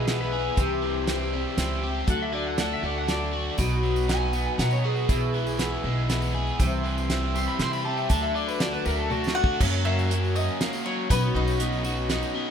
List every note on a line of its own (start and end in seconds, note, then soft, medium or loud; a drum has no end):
0.00 0.47 B1 medium
0.00 0.33 B2 medium
0.00 0.58 E3 medium
0.00 0.58 G#3 medium
0.00 0.19 G#4 medium
0.00 0.56 G#4 medium
0.00 0.55 B4 medium
0.00 0.56 E5 medium
0.00 0.55 B5 medium
0.07 0.32 E3 medium
0.07 0.33 B3 medium
0.07 0.31 E4 medium
0.07 0.30 G#4 medium
0.07 snare medium
0.07 closed hi-hat medium
0.21 0.57 B4 medium
0.31 0.57 B3 soft
0.31 0.56 E4 soft
0.31 0.57 G#4 soft
0.56 1.44 C2 medium
0.56 1.07 C3 medium
0.56 1.05 E3 medium
0.56 1.06 C4 medium
0.56 1.07 E4 medium
0.56 2.06 G4 medium
0.56 1.07 G4 medium
0.56 1.56 G4 medium
0.56 2.07 C5 medium
0.56 2.07 E5 medium
0.56 2.07 C6 medium
0.56 kick medium
0.56 closed hi-hat medium
0.83 2.07 E3 medium
1.06 1.32 E3 medium
1.06 1.32 C4 medium
1.06 1.31 E4 medium
1.06 1.30 G4 medium
1.06 snare medium
1.06 closed hi-hat medium
1.31 2.08 G3 medium
1.31 1.56 C4 soft
1.31 1.57 E4 soft
1.31 1.57 G4 medium
1.57 2.01 C#2 medium
1.57 1.83 E3 medium
1.57 1.83 C4 medium
1.57 1.82 E4 medium
1.57 1.80 G4 medium
1.57 snare medium
1.57 closed hi-hat medium
1.81 2.07 C4 soft
1.81 2.07 E4 soft
1.81 2.07 G4 soft
2.06 2.73 D2 medium
2.06 2.58 D3 medium
2.06 2.56 F#3 medium
2.06 2.56 A3 medium
2.06 2.56 D4 medium
2.06 5.05 F#4 medium
2.06 2.58 F#4 medium
2.06 3.56 A4 medium
2.06 3.56 D5 medium
2.06 2.21 F#5 medium
2.06 3.56 A5 medium
2.06 kick loud
2.06 closed hi-hat medium
2.22 2.34 E5 medium
2.33 3.59 D3 medium
2.33 2.46 D5 medium
2.47 2.58 F#5 medium
2.56 2.82 F#3 medium
2.56 2.83 A3 medium
2.56 2.82 D4 medium
2.56 2.80 F#4 medium
2.56 snare medium
2.56 closed hi-hat medium
2.61 2.72 F#5 medium
2.73 2.84 E5 medium
2.81 3.48 D2 medium
2.81 3.06 A3 soft
2.81 3.07 D4 soft
2.81 3.08 F#4 soft
2.85 2.97 D5 medium
2.98 3.09 F#5 medium
3.06 3.57 F#3 medium
3.06 3.58 A3 medium
3.06 3.58 D4 medium
3.06 3.58 F#4 medium
3.06 3.58 D5 medium
3.06 snare medium
3.06 closed hi-hat medium
3.33 3.58 F#4 medium
3.57 4.45 B1 medium
3.57 4.08 B2 medium
3.57 4.07 F#3 medium
3.57 4.09 B3 medium
3.57 4.08 D#4 medium
3.57 4.09 F#4 medium
3.57 6.56 B4 medium
3.57 5.07 D#5 medium
3.57 6.56 B5 medium
3.57 kick medium
3.57 closed hi-hat medium
3.57 tambourine loud
3.83 5.09 F#3 medium
3.83 tambourine soft
3.96 tambourine medium
4.08 4.57 F#3 medium
4.08 4.58 B3 medium
4.08 4.59 D#4 medium
4.08 4.60 F#4 medium
4.08 4.58 G#5 medium
4.08 snare medium
4.08 closed hi-hat medium
4.33 5.09 B3 medium
4.33 tambourine medium
4.58 5.02 B2 medium
4.58 5.09 F#3 medium
4.58 5.08 B3 medium
4.58 5.10 D#4 medium
4.58 5.10 F#4 medium
4.58 4.72 F#5 medium
4.58 snare medium
4.58 closed hi-hat medium
4.71 4.84 C#5 medium
4.71 tambourine medium
4.84 5.09 F#4 medium
4.84 5.82 G#4 loud
4.96 tambourine soft
5.08 5.74 B1 medium
5.08 5.59 B2 medium
5.08 5.57 E3 medium
5.08 5.57 B3 medium
5.08 5.60 E4 medium
5.08 6.58 G#4 medium
5.08 5.60 G#4 medium
5.08 8.06 E5 medium
5.08 kick loud
5.08 closed hi-hat medium
5.08 tambourine medium
5.34 6.60 E3 medium
5.34 tambourine soft
5.47 tambourine medium
5.58 5.84 E3 medium
5.58 5.84 B3 medium
5.58 5.83 E4 medium
5.58 5.82 G#4 medium
5.58 snare medium
5.58 closed hi-hat medium
5.83 6.49 B1 medium
5.83 6.60 G#3 medium
5.83 6.08 B3 soft
5.83 6.09 E4 medium
5.83 6.09 G#4 medium
6.08 6.34 E3 medium
6.08 6.34 B3 medium
6.08 6.35 E4 medium
6.08 6.33 G#4 medium
6.08 snare medium
6.08 closed hi-hat medium
6.22 tambourine medium
6.34 6.60 B3 soft
6.34 6.60 E4 soft
6.34 6.59 G#4 medium
6.47 tambourine soft
6.59 7.46 C2 medium
6.59 7.09 C3 medium
6.59 7.08 E3 medium
6.59 7.09 C4 medium
6.59 7.10 E4 loud
6.59 8.08 G4 medium
6.59 7.10 G4 loud
6.59 8.08 C5 medium
6.59 8.08 C6 medium
6.59 kick loud
6.59 closed hi-hat medium
6.59 tambourine loud
6.84 8.09 E3 medium
6.84 tambourine soft
6.98 tambourine medium
7.09 7.34 E3 medium
7.09 7.35 C4 medium
7.09 7.35 E4 medium
7.09 7.34 G4 medium
7.09 snare medium
7.09 closed hi-hat medium
7.35 8.10 G3 medium
7.35 7.59 C4 soft
7.35 7.60 E4 soft
7.35 7.60 G4 medium
7.35 7.48 C6 medium
7.35 tambourine medium
7.48 7.60 B5 loud
7.59 8.03 C3 medium
7.59 7.84 E3 medium
7.59 7.85 C4 medium
7.59 7.85 E4 medium
7.59 7.83 G4 medium
7.59 7.73 C6 medium
7.59 snare medium
7.59 closed hi-hat medium
7.73 7.85 B5 loud
7.73 tambourine medium
7.84 8.11 C4 soft
7.84 8.10 E4 soft
7.84 8.10 G4 soft
7.84 7.97 A5 loud
7.97 8.09 E5 medium
7.97 tambourine soft
8.09 8.75 D2 medium
8.09 8.60 D3 medium
8.09 8.59 F#3 medium
8.09 8.60 A3 medium
8.09 8.61 D4 medium
8.09 9.58 F#4 medium
8.09 8.61 F#4 medium
8.09 9.58 A4 medium
8.09 9.58 D5 medium
8.09 8.22 A5 medium
8.09 9.58 A5 medium
8.09 kick medium
8.09 closed hi-hat medium
8.09 tambourine loud
8.23 8.35 E5 medium
8.35 9.60 D3 medium
8.35 8.47 D5 medium
8.35 tambourine soft
8.48 8.60 B4 medium
8.48 tambourine medium
8.59 9.08 F#3 medium
8.59 9.09 A3 medium
8.59 9.11 D4 medium
8.59 9.11 F#4 medium
8.59 8.71 D5 medium
8.59 snare medium
8.59 closed hi-hat medium
8.73 8.85 B4 medium
8.73 tambourine soft
8.85 9.50 D2 medium
8.85 9.60 A3 medium
8.85 8.97 A#4 medium
8.85 tambourine medium
8.99 9.10 A4 medium
9.09 9.35 F#3 medium
9.09 9.35 A3 medium
9.09 9.35 D4 medium
9.09 9.35 F#4 loud
9.09 9.33 F#4 medium
9.09 high tom medium
9.09 tambourine soft
9.24 snare medium
9.24 tambourine medium
9.34 9.61 A3 soft
9.34 9.61 D4 soft
9.34 9.60 F#4 soft
9.34 9.86 F#5 loud
9.34 tambourine soft
9.44 kick loud
9.60 10.10 F#2 medium
9.60 10.47 F#2 loud
9.60 10.10 C#3 medium
9.60 10.10 F#3 medium
9.60 10.08 G#3 medium
9.60 10.10 A#3 loud
9.60 10.11 C#4 loud
9.60 12.51 F#4 medium
9.60 10.12 F#4 loud
9.60 11.08 A#4 medium
9.60 12.51 C#5 medium
9.60 11.09 G#5 medium
9.60 kick loud
9.60 crash loud
9.60 tambourine medium
9.74 tambourine soft
9.85 10.60 A#3 medium
9.85 10.31 E5 loud
9.99 tambourine medium
10.10 10.85 F#3 medium
10.10 10.58 G#3 medium
10.10 10.59 A#3 medium
10.10 10.61 C#4 medium
10.10 10.62 F#4 medium
10.10 closed hi-hat medium
10.10 tambourine soft
10.24 tambourine soft
10.36 11.13 C#4 medium
10.36 10.82 D#5 medium
10.36 tambourine medium
10.48 tambourine soft
10.59 11.09 G#3 medium
10.59 11.10 A#3 medium
10.59 11.11 C#4 medium
10.59 11.11 F#4 medium
10.59 snare medium
10.59 closed hi-hat medium
10.73 tambourine medium
10.85 11.10 F#3 medium
10.85 11.10 C#5 medium
11.10 11.31 B1 loud
11.10 11.59 B2 medium
11.10 11.58 F#3 medium
11.10 11.58 B3 medium
11.10 11.60 C#4 medium
11.10 11.59 D#4 medium
11.10 11.61 F#4 medium
11.10 11.36 B4 medium
11.10 12.51 D#5 medium
11.10 12.51 B5 medium
11.10 kick medium
11.10 closed hi-hat medium
11.10 tambourine loud
11.23 tambourine soft
11.34 12.21 B1 medium
11.34 12.09 D#4 medium
11.34 12.31 D#5 medium
11.48 tambourine medium
11.59 11.84 F#3 medium
11.59 12.34 B3 medium
11.59 11.85 C#4 medium
11.59 11.84 D#4 medium
11.59 11.82 F#4 medium
11.59 closed hi-hat medium
11.59 tambourine soft
11.72 tambourine soft
11.84 12.08 C#4 soft
11.84 12.09 D#4 soft
11.84 12.09 F#4 medium
11.84 tambourine medium
11.97 tambourine soft
12.08 12.34 F#3 medium
12.08 12.34 C#4 medium
12.08 12.34 D#4 medium
12.08 12.32 F#4 medium
12.08 snare medium
12.08 closed hi-hat medium
12.23 tambourine medium
12.33 12.51 B3 medium
12.33 12.51 C#4 soft
12.33 12.51 D#4 soft
12.33 12.51 F#4 medium